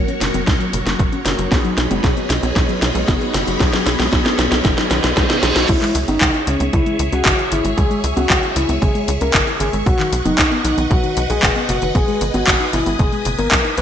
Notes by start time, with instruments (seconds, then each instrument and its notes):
Already playing: grand piano F#3 A#3 C#4 A#4, string machine F#3 F#4 A#4 C#5 C#6, riser
0.08 synth arpeggio sound C#4, closed hi-hat
0.21 analog synth bass F#1, synth arpeggio sound A#2, snare, closed hi-hat
0.34 analog synth bass F#1, synth arpeggio sound F#3, closed hi-hat, high conga
0.47 analog synth bass C#2, synth arpeggio sound A#2, kick, snare, closed hi-hat
0.60 synth arpeggio sound F#3, closed hi-hat
0.73 analog synth bass F#1, synth arpeggio sound A#2, closed hi-hat
0.86 analog synth bass F#1, synth arpeggio sound A#3, snare, closed hi-hat
0.99 analog synth bass F#1, synth arpeggio sound A#2, kick, closed hi-hat
1.12 synth arpeggio sound C#4, closed hi-hat
1.25 analog synth bass F#1, synth arpeggio sound A#2, grand piano F#3 A#3 C#4 A#4, snare, closed hi-hat
1.38 analog synth bass F#1, synth arpeggio sound F#3, closed hi-hat
1.52 analog synth bass B1, synth arpeggio sound B2, grand piano F#3 B3 D#4 G#4, string machine B3 G#4 C#5 D#5 B5, kick, snare, closed hi-hat
1.65 synth arpeggio sound F#3, closed hi-hat
1.78 analog synth bass B1, synth arpeggio sound B2, snare, closed hi-hat
1.91 analog synth bass F#1, synth arpeggio sound G#3, closed hi-hat, high conga
2.04 analog synth bass B1, synth arpeggio sound B2, kick, snare, closed hi-hat
2.17 synth arpeggio sound B3, closed hi-hat
2.30 analog synth bass B1, synth arpeggio sound B2, snare, closed hi-hat
2.43 analog synth bass B1, synth arpeggio sound F#3, closed hi-hat, high conga
2.56 analog synth bass B1, synth arpeggio sound B2, kick, snare, closed hi-hat
2.69 synth arpeggio sound F#3, closed hi-hat
2.82 analog synth bass B1, synth arpeggio sound B2, snare, closed hi-hat
2.95 analog synth bass B1, synth arpeggio sound G#3, closed hi-hat
3.08 analog synth bass F#1, synth arpeggio sound B2, grand piano F#3 B3 D#4 G#4, kick, snare, closed hi-hat
3.21 synth arpeggio sound B3, closed hi-hat
3.34 analog synth bass F#1, synth arpeggio sound B2, snare, closed hi-hat
3.47 analog synth bass F#1, synth arpeggio sound F#3, closed hi-hat
3.60 analog synth bass B1, synth arpeggio sound B2, grand piano F#3 B3 D#4 G#4, kick, snare, closed hi-hat
3.73 synth arpeggio sound F#3, snare, closed hi-hat
3.86 analog synth bass B1, synth arpeggio sound B2, snare, closed hi-hat
3.99 analog synth bass B1, synth arpeggio sound G#3, snare, closed hi-hat, high conga
4.12 analog synth bass B1, synth arpeggio sound B2, kick, snare, closed hi-hat
4.25 synth arpeggio sound B3, snare, closed hi-hat
4.39 analog synth bass B1, synth arpeggio sound B2, snare, closed hi-hat
4.52 analog synth bass B1, synth arpeggio sound F#3, snare, closed hi-hat, high conga
4.65 analog synth bass F#1, synth arpeggio sound B2, kick, snare, closed hi-hat, reverse cymbal
4.78 synth arpeggio sound F#3, snare, closed hi-hat
4.91 analog synth bass B1, synth arpeggio sound D#3, snare, closed hi-hat
5.04 analog synth bass B1, synth arpeggio sound B2, snare, closed hi-hat
5.17 analog synth bass B1, synth arpeggio sound G#3, kick, snare, closed hi-hat
5.30 synth arpeggio sound B2, snare, closed hi-hat
5.43 analog synth bass B1, synth arpeggio sound D#3, grand piano F#3 B3 D#4 G#4, snare, closed hi-hat
5.56 analog synth bass B1, synth arpeggio sound F#4, snare, closed hi-hat
5.69 analog synth bass C#2, synth arpeggio sound C#3, soft synth lead E4, string machine G#4 C#5 E5 C#6, kick, closed hi-hat, crash
5.82 synth arpeggio sound G#3, clap, closed hi-hat
5.95 analog synth bass C#2, synth arpeggio sound C#3, closed hi-hat
6.08 analog synth bass G#1, synth arpeggio sound C#4, soft synth lead D#4, closed hi-hat, high conga
6.21 analog synth bass C#2, synth arpeggio sound C#3, kick, clap, closed hi-hat
6.34 synth arpeggio sound E4, closed hi-hat
6.47 analog synth bass C#2, synth arpeggio sound C#3, soft synth lead C#4, closed hi-hat
6.60 analog synth bass C#2, synth arpeggio sound G#3, closed hi-hat, high conga
6.73 analog synth bass C#2, synth arpeggio sound C#3, soft synth lead E4, kick, closed hi-hat
6.86 synth arpeggio sound G#3, closed hi-hat
6.99 analog synth bass C#2, synth arpeggio sound C#3, closed hi-hat
7.12 analog synth bass C#2, synth arpeggio sound C#4, soft synth lead F#4, closed hi-hat
7.25 analog synth bass G#1, synth arpeggio sound C#3, kick, clap, closed hi-hat
7.38 synth arpeggio sound E4, closed hi-hat
7.51 analog synth bass G#1, synth arpeggio sound C#3, soft synth lead E4, closed hi-hat
7.64 analog synth bass G#1, synth arpeggio sound G#3, closed hi-hat
7.77 analog synth bass C#2, synth arpeggio sound C#3, soft synth lead G#4, kick, closed hi-hat
7.90 synth arpeggio sound G#3, closed hi-hat
8.04 analog synth bass C#2, synth arpeggio sound C#3, closed hi-hat
8.17 analog synth bass C#2, synth arpeggio sound C#4, soft synth lead F#4, closed hi-hat, high conga
8.30 analog synth bass C#2, synth arpeggio sound C#3, kick, clap, closed hi-hat
8.43 synth arpeggio sound E4, closed hi-hat
8.56 analog synth bass C#2, synth arpeggio sound C#3, soft synth lead E4, closed hi-hat
8.69 analog synth bass C#2, synth arpeggio sound G#3, closed hi-hat, high conga
8.82 analog synth bass G#1, synth arpeggio sound C#3, soft synth lead G#4, kick, closed hi-hat
8.95 synth arpeggio sound G#3, closed hi-hat
9.08 analog synth bass C#2, synth arpeggio sound C#3, closed hi-hat
9.21 analog synth bass C#2, synth arpeggio sound C#4, soft synth lead A#4, closed hi-hat
9.34 analog synth bass G#1, synth arpeggio sound C#3, kick, clap, closed hi-hat
9.47 synth arpeggio sound E4, closed hi-hat
9.60 analog synth bass G#1, synth arpeggio sound C#3, soft synth lead G#4, closed hi-hat
9.73 analog synth bass G#1, synth arpeggio sound G#3, closed hi-hat
9.86 analog synth bass B1, synth arpeggio sound B2, soft synth lead F#4, string machine B4 D#5 F#5, kick, closed hi-hat
9.99 synth arpeggio sound D#3, clap, closed hi-hat
10.12 analog synth bass B1, synth arpeggio sound B2, closed hi-hat
10.25 analog synth bass F#1, synth arpeggio sound F#3, soft synth lead D#4, closed hi-hat, high conga
10.38 analog synth bass B1, synth arpeggio sound B2, kick, clap, closed hi-hat
10.51 synth arpeggio sound B3, closed hi-hat
10.64 analog synth bass B1, synth arpeggio sound B2, soft synth lead D#4, closed hi-hat
10.78 analog synth bass B1, synth arpeggio sound D#3, closed hi-hat, high conga
10.91 analog synth bass B1, synth arpeggio sound B2, soft synth lead F#4, kick, closed hi-hat
11.04 synth arpeggio sound D#3, closed hi-hat
11.17 analog synth bass B1, synth arpeggio sound B2, closed hi-hat
11.30 analog synth bass B1, synth arpeggio sound F#3, soft synth lead G#4, closed hi-hat
11.43 analog synth bass F#1, synth arpeggio sound B2, kick, clap, closed hi-hat
11.56 synth arpeggio sound B3, closed hi-hat
11.69 analog synth bass F#1, synth arpeggio sound B2, soft synth lead F#4, closed hi-hat
11.82 analog synth bass F#1, synth arpeggio sound D#3, closed hi-hat
11.95 analog synth bass G#1, synth arpeggio sound B2, soft synth lead G#4, string machine G#5 D#6, kick, closed hi-hat
12.08 synth arpeggio sound G#3, closed hi-hat
12.21 analog synth bass G#1, synth arpeggio sound B2, closed hi-hat
12.34 analog synth bass G#1, synth arpeggio sound B3, soft synth lead F#4, closed hi-hat, high conga
12.47 analog synth bass G#1, synth arpeggio sound B2, kick, clap, closed hi-hat
12.60 synth arpeggio sound D#4, closed hi-hat
12.73 analog synth bass G#1, synth arpeggio sound B2, soft synth lead E4, closed hi-hat
12.86 analog synth bass G#1, synth arpeggio sound G#3, closed hi-hat, high conga
12.99 analog synth bass F#1, synth arpeggio sound B2, soft synth lead G#4, kick, closed hi-hat
13.12 synth arpeggio sound G#3, closed hi-hat
13.25 analog synth bass F#1, synth arpeggio sound B2, closed hi-hat
13.38 analog synth bass G#1, synth arpeggio sound B3, soft synth lead A#4, closed hi-hat
13.52 analog synth bass B1, synth arpeggio sound B2, kick, clap, closed hi-hat
13.65 synth arpeggio sound D#4, closed hi-hat
13.77 analog synth bass B1, synth arpeggio sound B2, soft synth lead B4, closed hi-hat